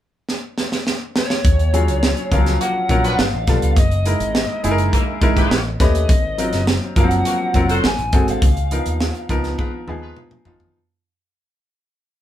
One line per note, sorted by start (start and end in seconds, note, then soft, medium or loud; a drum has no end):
0.29 snare soft
0.58 snare medium
0.72 snare medium
0.87 snare medium
1.16 2.37 C#5 medium
1.16 snare medium
1.30 snare medium
1.45 1.88 D#2 medium
1.45 kick loud
1.45 closed hi-hat medium
1.59 closed hi-hat soft
1.73 2.26 F#3 medium
1.73 2.26 C#4 medium
1.73 2.26 F4 medium
1.73 2.26 G#4 medium
1.73 closed hi-hat medium
1.88 2.12 C#2 medium
1.88 closed hi-hat soft
2.03 snare loud
2.17 closed hi-hat soft
2.32 2.56 C#2 medium
2.32 2.38 F3 medium
2.32 2.84 C#4 medium
2.32 2.84 F4 medium
2.32 2.84 A#4 medium
2.32 2.61 F5 medium
2.32 kick medium
2.32 closed hi-hat medium
2.38 2.87 F#3 medium
2.46 snare soft
2.46 closed hi-hat soft
2.60 2.73 A#3 medium
2.60 2.73 F#4 medium
2.60 2.73 A#4 medium
2.60 3.20 F#5 loud
2.60 closed hi-hat medium
2.89 3.14 A#1 medium
2.89 3.19 F#3 medium
2.89 3.19 C#4 medium
2.89 3.19 F4 medium
2.89 3.19 A#4 medium
2.89 kick medium
2.89 closed hi-hat medium
3.04 3.22 D4 medium
3.04 3.22 F4 medium
3.04 3.22 B4 loud
3.04 closed hi-hat medium
3.19 3.33 G1 medium
3.19 3.78 F5 medium
3.19 snare loud
3.33 3.45 A1 medium
3.47 3.60 B1 medium
3.47 3.77 G3 medium
3.47 3.77 B3 medium
3.47 3.77 F4 medium
3.47 3.77 A4 medium
3.47 kick medium
3.47 snare soft
3.47 closed hi-hat medium
3.62 3.74 C#2 medium
3.62 closed hi-hat soft
3.77 4.13 F#1 medium
3.77 4.61 D#5 medium
3.77 kick loud
3.77 closed hi-hat medium
3.91 closed hi-hat soft
4.05 4.58 G#3 medium
4.05 4.58 D#4 medium
4.05 4.58 E4 medium
4.05 4.58 A#4 medium
4.05 closed hi-hat medium
4.20 4.44 G#1 medium
4.20 closed hi-hat soft
4.35 snare medium
4.64 4.88 F#1 medium
4.64 5.16 G#3 medium
4.64 5.16 D#4 medium
4.64 5.16 E4 medium
4.64 4.71 G#4 medium
4.64 closed hi-hat medium
4.71 5.20 A#4 loud
4.78 closed hi-hat soft
4.92 5.05 A#3 medium
4.92 5.05 E4 medium
4.92 5.05 A#4 medium
4.92 kick medium
4.92 closed hi-hat medium
5.22 5.46 G#1 medium
5.22 5.51 G#3 medium
5.22 5.51 D#4 medium
5.22 5.51 E4 medium
5.22 5.52 A#4 loud
5.22 kick medium
5.22 closed hi-hat medium
5.36 5.61 E4 medium
5.36 5.61 G4 medium
5.36 5.61 B4 medium
5.36 kick medium
5.36 closed hi-hat medium
5.51 5.75 A1 medium
5.51 snare medium
5.80 6.04 D#2 medium
5.80 6.09 A3 medium
5.80 6.09 C#4 medium
5.80 6.09 G4 medium
5.80 6.10 B4 medium
5.80 6.64 D#5 loud
5.80 kick medium
5.80 snare soft
5.80 closed hi-hat medium
5.95 closed hi-hat soft
6.09 6.53 G#1 medium
6.09 kick loud
6.09 closed hi-hat medium
6.38 6.91 F#3 medium
6.38 6.91 C4 medium
6.38 6.91 F4 medium
6.38 6.91 A#4 medium
6.38 closed hi-hat medium
6.53 6.77 F#1 medium
6.53 snare soft
6.53 closed hi-hat medium
6.67 snare loud
6.96 7.21 F#1 medium
6.96 7.49 F3 medium
6.96 7.49 F#3 medium
6.96 7.03 A#3 medium
6.96 7.49 A#4 medium
6.96 7.86 F#5 medium
6.96 kick medium
6.96 closed hi-hat medium
7.03 7.52 C4 medium
7.11 closed hi-hat soft
7.25 7.38 A#3 medium
7.25 7.38 F#4 medium
7.25 7.38 A#4 medium
7.25 closed hi-hat medium
7.54 7.79 F1 medium
7.54 7.84 F#3 medium
7.54 7.84 C4 medium
7.54 7.84 F4 medium
7.54 7.84 A#4 medium
7.54 kick medium
7.54 closed hi-hat medium
7.69 7.88 F#4 medium
7.69 7.88 A4 medium
7.69 7.88 C5 loud
7.69 closed hi-hat medium
7.84 7.96 G#1 loud
7.84 8.26 G#5 medium
7.84 snare medium
7.99 8.11 A1 medium
7.99 closed hi-hat soft
8.13 8.25 F#1 medium
8.13 8.42 G#3 medium
8.13 8.42 C4 medium
8.13 8.43 F#4 medium
8.13 8.43 A4 medium
8.13 kick medium
8.13 closed hi-hat medium
8.28 8.40 G#1 medium
8.28 10.14 F5 medium
8.28 closed hi-hat soft
8.42 8.78 C#2 medium
8.42 kick loud
8.42 closed hi-hat medium
8.57 closed hi-hat soft
8.71 9.24 F3 medium
8.71 9.24 B3 medium
8.71 9.24 D#4 medium
8.71 9.24 A#4 medium
8.71 closed hi-hat medium
8.86 9.10 D#2 medium
8.86 closed hi-hat soft
9.00 snare medium
9.15 closed hi-hat soft
9.29 9.53 C#2 medium
9.29 9.82 F3 medium
9.29 9.82 B3 medium
9.29 9.82 D#4 medium
9.29 9.82 A#4 loud
9.29 kick medium
9.29 closed hi-hat medium
9.44 snare soft
9.44 closed hi-hat soft
9.58 9.71 F4 medium
9.58 9.71 G#4 medium
9.58 9.71 B4 medium
9.58 kick medium
9.58 high tom soft
9.88 10.12 D#2 medium
9.88 10.40 F3 medium
9.88 10.40 B3 medium
9.88 10.41 D#4 medium
9.88 10.41 G#4 loud
9.88 mid tom medium
10.02 10.21 F4 medium
10.02 10.21 G#4 medium
10.02 10.20 B4 medium
10.17 mid tom medium
10.31 mid tom medium
10.45 10.70 G#1 medium
10.45 10.75 F3 medium
10.45 10.75 B3 medium
10.45 10.75 D#4 medium
10.45 10.75 F4 loud
10.45 floor tom medium
10.60 floor tom medium